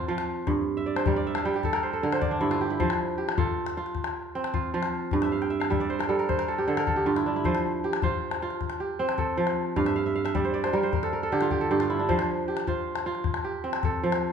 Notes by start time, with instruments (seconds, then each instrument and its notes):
Already playing: kora C4
0.08 kora F3 F4
0.18 calabash click
0.47 kora G2, calabash thump, calabash click
0.77 kora E5
0.86 kora D5
0.96 kora C5, calabash click
1.06 kora G3 A#4, calabash thump
1.16 kora D5
1.27 kora E5
1.35 kora F5, calabash click
1.45 kora G3 G5
1.54 kora G4, calabash click
1.63 kora A4, calabash thump, calabash click
1.73 kora A#4, calabash click
1.83 kora C5
1.93 kora A4
2.03 kora D3 A#4
2.12 kora C5, calabash click
2.21 kora D5, calabash thump
2.31 kora D4
2.41 kora G2 E4
2.51 kora F4, calabash click
2.61 kora G4
2.70 kora E4
2.80 kora F3 C5, calabash thump, calabash click
2.90 calabash click
3.18 kora G4
3.29 calabash click
3.38 kora F4 A4, calabash thump
3.66 calabash click
3.77 kora F4
3.86 calabash click
3.95 calabash thump, calabash click
4.04 calabash click
4.35 kora C4
4.44 calabash click
4.54 kora F4, calabash thump
4.74 kora F3 F4
4.83 calabash click
5.11 kora G2, calabash thump
5.22 kora E5, calabash click
5.32 kora F5
5.42 kora G5, calabash click
5.50 kora E5
5.60 kora F5, calabash click
5.70 kora G3 E5, calabash thump
5.80 kora D5, calabash click
5.90 kora C5
5.99 kora A#4, calabash click
6.09 kora G3 A4
6.19 kora A#4, calabash click
6.29 kora C5, calabash thump
6.38 kora A#4, calabash click
6.48 kora A4, calabash click
6.58 kora G4
6.68 kora D3 A4, calabash click
6.77 kora A#4, calabash click
6.87 kora A4, calabash thump
6.96 kora G4
7.06 kora G2 F4
7.16 kora E4, calabash click
7.26 kora D4
7.36 kora E4
7.44 kora F3 C5, calabash thump, calabash click
7.55 calabash click
7.84 kora G4
7.93 calabash click
8.02 kora F4 C5, calabash thump
8.31 calabash click
8.42 kora F4
8.50 calabash click
8.61 calabash thump, calabash click
8.70 calabash click
8.80 kora G4
8.99 kora C4
9.09 calabash click
9.18 kora A4, calabash thump
9.37 kora F3
9.47 calabash click
9.76 kora G2 F5, calabash thump, calabash click
9.86 kora E5, calabash click
9.96 kora F5
10.06 kora E5
10.15 kora F5
10.24 kora E5, calabash click
10.35 kora G3 D5, calabash thump
10.45 kora C5
10.54 kora D5
10.64 kora C5, calabash click
10.73 kora G3 A#4
10.83 kora C5, calabash click
10.93 kora A#4, calabash thump, calabash click
11.03 kora A4, calabash click
11.13 kora A#4
11.23 kora A4
11.32 kora D3 G4
11.41 kora F4, calabash click
11.51 kora G4, calabash thump
11.61 kora A4
11.71 kora G2 G4
11.80 kora F4, calabash click
11.90 kora E4
11.99 kora D4
12.09 kora F3 C5, calabash thump, calabash click
12.19 calabash click
12.48 kora G4
12.57 calabash click
12.67 kora F4 C5, calabash thump
12.96 calabash click
13.06 kora F4
13.15 calabash click
13.24 calabash thump, calabash click
13.34 calabash click
13.44 kora G4
13.64 kora C4
13.73 calabash click
13.83 kora A4, calabash thump
14.03 kora F3
14.12 calabash click